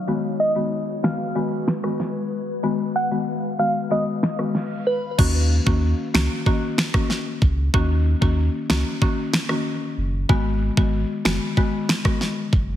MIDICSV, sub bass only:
0, 0, Header, 1, 2, 480
1, 0, Start_track
1, 0, Key_signature, -6, "minor"
1, 0, Tempo, 638298
1, 61, Time_signature, 4, 2, 24, 8
1, 9598, End_track
2, 0, Start_track
2, 0, Title_t, "Sub bass"
2, 0, Program_c, 0, 38
2, 3901, Note_on_c, 0, 39, 104
2, 4208, Note_off_c, 0, 39, 0
2, 4261, Note_on_c, 0, 39, 94
2, 4465, Note_off_c, 0, 39, 0
2, 4620, Note_on_c, 0, 37, 91
2, 4723, Note_off_c, 0, 37, 0
2, 5579, Note_on_c, 0, 37, 104
2, 5784, Note_off_c, 0, 37, 0
2, 5820, Note_on_c, 0, 39, 102
2, 6127, Note_off_c, 0, 39, 0
2, 6181, Note_on_c, 0, 39, 93
2, 6386, Note_off_c, 0, 39, 0
2, 6542, Note_on_c, 0, 37, 92
2, 6644, Note_off_c, 0, 37, 0
2, 7501, Note_on_c, 0, 30, 92
2, 7706, Note_off_c, 0, 30, 0
2, 7741, Note_on_c, 0, 32, 107
2, 8048, Note_off_c, 0, 32, 0
2, 8102, Note_on_c, 0, 32, 98
2, 8306, Note_off_c, 0, 32, 0
2, 8461, Note_on_c, 0, 30, 93
2, 8563, Note_off_c, 0, 30, 0
2, 9421, Note_on_c, 0, 30, 91
2, 9598, Note_off_c, 0, 30, 0
2, 9598, End_track
0, 0, End_of_file